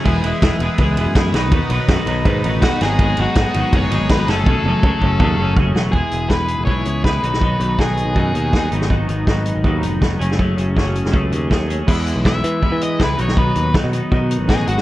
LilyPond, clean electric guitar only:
\new Staff \with { instrumentName = "Clean electric guitar" } { \time 4/4 \key b \mixolydian \tempo 4 = 162 <e gis b e' gis'>8 <e gis b e' gis'>8 <e gis b e' gis'>8 <e gis b e' gis'>8 <e gis b e' gis'>8 <e gis b e' gis'>8 <e gis b e' gis'>8 <b, dis fis b dis' b'>8 | <b, dis fis b dis' b'>8 <b, dis fis b dis' b'>8 <b, dis fis b dis' b'>8 <b, dis fis b dis' b'>8 <b, dis fis b dis' b'>8 <b, dis fis b dis' b'>8 <b, dis fis b dis' b'>8 <gis, dis fis b dis' gis'>8 | <gis, dis fis b dis' gis'>8 <gis, dis fis b dis' gis'>8 <gis, dis fis b dis' gis'>8 <gis, dis fis b dis' gis'>8 <gis, dis fis b dis' gis'>8 <gis, dis fis b dis' gis'>8 <gis, dis fis b dis' gis'>8 <fis, cis fis a cis' gis'>8 | <fis, cis fis a cis' gis'>8 <fis, cis fis a cis' gis'>8 <fis, cis fis a cis' gis'>8 <fis, cis fis a cis' gis'>8 <fis, cis fis a cis' gis'>8 <fis, cis fis a cis' gis'>8 <fis, cis fis a cis' gis'>8 <fis, cis fis a cis' gis'>8 |
<e gis b e' gis'>8 <b e' gis'>8 <gis b e' gis'>4 <e gis b e' gis'>8 <b e' gis'>8 <gis b e' gis'>8 <b, dis fis b dis'>8 | <b, dis fis b dis'>8 <fis b dis'>8 <dis fis b dis'>4 <b, dis fis b dis'>8 <fis b dis'>8 <dis fis b dis'>8 <gis, dis fis b dis'>8 | <gis, dis fis b dis'>8 <fis b dis'>8 <dis fis b dis'>4 <gis, dis fis b dis'>8 <fis b dis'>8 <dis fis b dis'>8 <fis, cis fis a cis' gis'>8 | <fis, cis fis a cis' gis'>8 <fis a cis' gis'>8 <fis a cis' gis'>4 <fis, cis fis a cis' gis'>8 <fis a cis' gis'>8 <fis a cis' gis'>8 <fis a cis' gis'>8 |
<e gis b e'>4 <e gis b e'>8 <gis b e'>8 <e gis b e'>4 <e gis b e'>8 <b, dis fis b dis'>8 | <b, dis fis b dis'>4 <dis fis b dis'>8 <fis b dis'>8 <dis fis b dis'>4 <b, dis fis b dis'>8 <gis, dis fis b dis'>8 | }